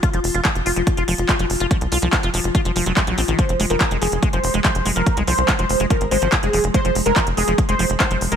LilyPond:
<<
  \new Staff \with { instrumentName = "Analog synth lead" } { \time 4/4 \key f \minor \tempo 4 = 143 r1 | r1 | c''8 r16 bes'8 r16 aes'8 r16 c''8 r16 c''8 r16 bes'16~ | bes'16 r16 c''8 r16 c''8 r16 bes'16 r16 c''8 r16 aes'8 r16 |
c''8 r16 bes'8 r16 aes'8 r16 c''8 r16 c''8 r16 bes'16 | }
  \new Staff \with { instrumentName = "Synth texture" } { \clef bass \time 4/4 \key f \minor <f f'>1~ | <f f'>1 | aes1~ | aes1~ |
aes1 | }
  \new Staff \with { instrumentName = "Acid bass" } { \clef bass \time 4/4 \key f \minor f'16 f16 r16 f'16 f16 r16 f'16 f16 r16 f'16 f16 r16 f'16 f16 r16 f'16 | f16 r16 f'16 f16 r16 f'16 f16 r16 f'16 f16 f16 ges16 ges16 ges16 c'16 ees16 | f16 r16 aes16 f16 r16 aes16 f16 r16 aes16 f16 r16 aes16 f16 r16 aes16 f16 | r16 aes16 f16 r16 aes16 f16 r16 aes16 f16 r16 aes16 f16 r16 aes16 f16 r16 |
aes16 f16 r16 aes16 f16 r16 aes16 f16 r16 aes16 f16 r16 aes16 f16 r16 aes16 | }
  \new Staff \with { instrumentName = "Analog synth bass" } { \clef bass \time 4/4 \key f \minor r16 f,,16 f,,16 f,,16 r16 f,,16 f,,16 f,,16 r16 f,,16 f,,16 f,,16 r16 f,,16 f,,16 f,,16 | r16 c,16 c,16 c,16 r16 f,,16 f,,16 f,,16 r16 f,,16 f,,16 f,,16 r16 bes,,16 bes,,16 bes,,16 | r16 f,,16 f,,16 f,,16 r16 f,,16 f,,16 f,,16 r16 f,,16 f,,16 f,,16 r16 f,,16 f,,16 f,,16 | r16 c,16 c,16 c,16 r16 f,,16 f,,16 f,,16 r16 aes,,16 aes,,16 aes,,16 r16 f,,16 f,,16 f,,16 |
r16 f,,16 f,,16 f,,16 r16 f,,16 f,,16 f,,16 r16 f,,16 f,,16 f,,16 r16 f,,16 f,,16 f,,16 | }
  \new DrumStaff \with { instrumentName = "Drums" } \drummode { \time 4/4 <hh bd>16 hh16 hho16 hh16 <hc hh bd>16 hh16 hho16 hh16 <hh bd>16 hh16 hho16 hh16 <hc hh bd>16 hh16 hho16 hh16 | <hh bd>16 hh16 hho16 hh16 <hc hh bd>16 hh16 hho16 hh16 <hh bd>16 hh16 hho16 hh16 <hc hh bd>16 hh16 hho16 hh16 | <hh bd>16 hh16 hho16 hh16 <hc hh bd>16 hh16 hho16 hh16 <hh bd>16 hh16 hho16 hh16 <hc hh bd>16 hh16 hho16 hh16 | <hh bd>16 hh16 hho16 hh16 <hc hh bd>16 hh16 hho16 hh16 <hh bd>16 hh16 hho16 hh16 <hc hh bd>16 hh16 hho16 hh16 |
<hh bd>16 hh16 hho16 hh16 <hc hh bd>16 hh16 hho16 hh16 <hh bd>16 hh16 hho16 hh16 <hc hh bd>16 hh16 hho16 hh16 | }
>>